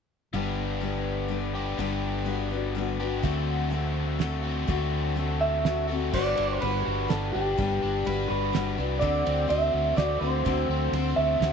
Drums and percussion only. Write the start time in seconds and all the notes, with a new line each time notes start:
3.24 kick
4.20 snare
4.68 kick
5.65 snare
6.13 kick, crash
6.37 ride
6.62 ride
7.10 snare, ride
7.58 kick, ride
8.07 ride
8.55 snare, ride
9.02 kick, ride
9.27 ride
9.50 ride
9.98 snare, ride
10.46 kick, ride
10.93 ride
11.42 snare, ride